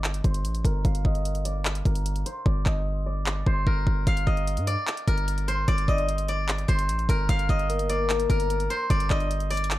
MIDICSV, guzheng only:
0, 0, Header, 1, 2, 480
1, 0, Start_track
1, 0, Key_signature, -2, "minor"
1, 0, Tempo, 402685
1, 1011, Time_signature, 4, 2, 24, 8
1, 11666, End_track
2, 0, Start_track
2, 0, Title_t, "Guzheng"
2, 0, Program_c, 0, 107
2, 0, Note_on_c, 0, 70, 74
2, 0, Note_on_c, 0, 72, 74
2, 0, Note_on_c, 0, 74, 84
2, 280, Note_off_c, 0, 72, 0
2, 285, Note_on_c, 0, 72, 76
2, 771, Note_off_c, 0, 70, 0
2, 775, Note_on_c, 0, 70, 81
2, 1011, Note_on_c, 0, 77, 105
2, 1254, Note_on_c, 0, 75, 84
2, 1326, Note_off_c, 0, 74, 0
2, 1729, Note_on_c, 0, 74, 68
2, 1800, Note_off_c, 0, 75, 0
2, 2203, Note_off_c, 0, 70, 0
2, 2208, Note_on_c, 0, 70, 75
2, 2644, Note_off_c, 0, 72, 0
2, 2692, Note_on_c, 0, 72, 79
2, 2925, Note_off_c, 0, 74, 0
2, 2930, Note_on_c, 0, 74, 98
2, 2995, Note_off_c, 0, 77, 0
2, 3168, Note_on_c, 0, 75, 79
2, 3240, Note_off_c, 0, 74, 0
2, 3650, Note_on_c, 0, 74, 78
2, 3721, Note_off_c, 0, 75, 0
2, 4126, Note_off_c, 0, 72, 0
2, 4130, Note_on_c, 0, 72, 69
2, 4365, Note_off_c, 0, 70, 0
2, 4370, Note_on_c, 0, 70, 79
2, 4851, Note_on_c, 0, 77, 100
2, 5085, Note_on_c, 0, 75, 69
2, 5157, Note_off_c, 0, 74, 0
2, 5568, Note_on_c, 0, 74, 89
2, 5639, Note_off_c, 0, 75, 0
2, 6044, Note_off_c, 0, 70, 0
2, 6049, Note_on_c, 0, 70, 75
2, 6490, Note_off_c, 0, 72, 0
2, 6531, Note_on_c, 0, 72, 78
2, 6767, Note_off_c, 0, 74, 0
2, 6772, Note_on_c, 0, 74, 106
2, 6835, Note_off_c, 0, 77, 0
2, 7015, Note_on_c, 0, 75, 83
2, 7087, Note_off_c, 0, 74, 0
2, 7493, Note_on_c, 0, 74, 84
2, 7565, Note_off_c, 0, 75, 0
2, 7960, Note_off_c, 0, 72, 0
2, 7965, Note_on_c, 0, 72, 77
2, 8451, Note_off_c, 0, 70, 0
2, 8456, Note_on_c, 0, 70, 84
2, 8690, Note_on_c, 0, 77, 109
2, 8934, Note_on_c, 0, 75, 82
2, 9006, Note_off_c, 0, 74, 0
2, 9409, Note_on_c, 0, 74, 70
2, 9481, Note_off_c, 0, 75, 0
2, 9883, Note_off_c, 0, 70, 0
2, 9888, Note_on_c, 0, 70, 73
2, 10324, Note_off_c, 0, 72, 0
2, 10372, Note_on_c, 0, 72, 76
2, 10606, Note_off_c, 0, 74, 0
2, 10611, Note_on_c, 0, 74, 99
2, 10674, Note_off_c, 0, 77, 0
2, 10849, Note_on_c, 0, 75, 81
2, 10921, Note_off_c, 0, 74, 0
2, 11330, Note_on_c, 0, 74, 82
2, 11401, Note_off_c, 0, 75, 0
2, 11666, Note_off_c, 0, 70, 0
2, 11666, Note_off_c, 0, 72, 0
2, 11666, Note_off_c, 0, 74, 0
2, 11666, End_track
0, 0, End_of_file